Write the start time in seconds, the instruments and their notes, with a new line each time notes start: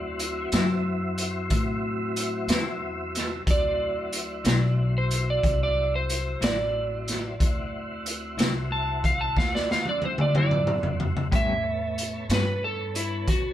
Already playing: upright bass D2, tonewheel organ F#3 C4 E4, electric slide guitar D5
0.19 closed hi-hat
0.52 upright bass F#2, clean electric guitar D3 F#3 C4 E4, snare, closed hi-hat
1.18 closed hi-hat
1.50 upright bass A2, kick, closed hi-hat
2.16 closed hi-hat
2.47 upright bass E2, clean electric guitar D3 F#3 C4 E4, snare, closed hi-hat
3.15 snare, closed hi-hat
3.46 upright bass D2, tonewheel organ F#3 C4 E4, kick, closed hi-hat
3.51 electric slide guitar D5
4.13 closed hi-hat
4.44 upright bass B1, clean electric guitar D3 F#3 C4 E4, snare, closed hi-hat
4.98 electric slide guitar C5
5.11 closed hi-hat
5.30 electric slide guitar D5
5.43 upright bass C2, kick, closed hi-hat
5.63 electric slide guitar D5
5.96 electric slide guitar C5
6.09 closed hi-hat
6.41 upright bass A1, clean electric guitar D3 F#3 C4 E4, electric slide guitar D5, snare, closed hi-hat
7.08 snare, closed hi-hat
7.39 upright bass D2, tonewheel organ C4 E4 F#4, kick, closed hi-hat
8.06 closed hi-hat
8.37 upright bass C2, clean electric guitar D3 F#3 C4 E4, snare, closed hi-hat
8.72 electric slide guitar A5
9.04 electric slide guitar F5, kick, closed hi-hat
9.21 electric slide guitar A5
9.36 upright bass D2, electric slide guitar F5, kick, snare
9.55 electric slide guitar D5, snare
9.71 electric slide guitar F5, snare
9.85 electric slide guitar D5, high tom
10.02 electric slide guitar C5, high tom
10.18 electric slide guitar D5, mid tom
10.33 upright bass F#2, clean electric guitar D3 F#3 C4 E4, mid tom
10.38 electric slide guitar D5
10.51 mid tom
10.67 mid tom
10.83 floor tom
11.00 floor tom
11.17 floor tom
11.31 clean electric guitar A2 G3 B3 C#4, upright bass A2, tonewheel organ C4 D4 G#4, electric slide guitar E5, kick, closed hi-hat
11.62 tonewheel organ B3 C#4 A4
11.98 closed hi-hat
12.29 upright bass G2, clean electric guitar A2 G3 B3 C#4, snare, closed hi-hat
12.34 electric slide guitar B4
12.64 electric slide guitar A4
12.95 electric slide guitar E4, closed hi-hat
13.28 upright bass E2, electric slide guitar F#4, kick, closed hi-hat